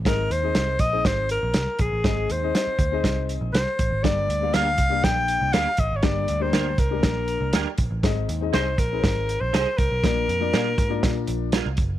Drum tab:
HH |xxxxxxxx|xxxxxxxx|xxxxxxxx|xxxxxxxx|
SD |o-o-o-o-|o-o-o-o-|o-o-o-o-|o-o-o-o-|
BD |o--oo--o|o--oo--o|o--oo--o|o--oo--o|

HH |xxxxxxxx|xxxxxxxx|
SD |o-o-o-o-|o-o-o-o-|
BD |o--oo--o|o--oo--o|